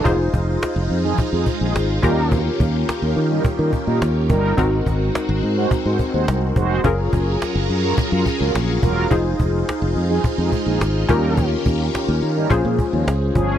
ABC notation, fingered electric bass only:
X:1
M:4/4
L:1/16
Q:1/4=106
K:Ebdor
V:1 name="Fingered electric bass" clef=bass
F,,,2 F,,,2 z F,,, F,,2 z F,, z B,,, A,,,2 E,,2- | E,,2 E,,2 z E,, E,2 z E, z B,, E,,2 =G,,,2 | A,,,2 A,,,2 z A,,, A,,2 z A,, z E,, C,,2 F,,,2 | G,,,2 G,,,2 z G,,, G,,2 z G,, z D,, B,,,2 =E,,,2 |
F,,,2 F,,,2 z F,,, F,,2 z F,, z B,,, A,,,2 E,,2- | E,,2 E,,2 z E,, E,2 B,,, B,, z E,, D,,2 =G,,,2 |]